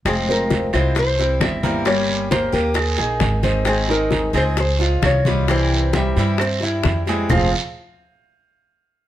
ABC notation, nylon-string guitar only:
X:1
M:4/4
L:1/8
Q:1/4=132
K:Fm
V:1 name="Nylon-string guitar"
A B2 c c2 =e2 | d2 c B4 z | A B2 c c2 d2 | c2 =e e4 z |
f z6 z |]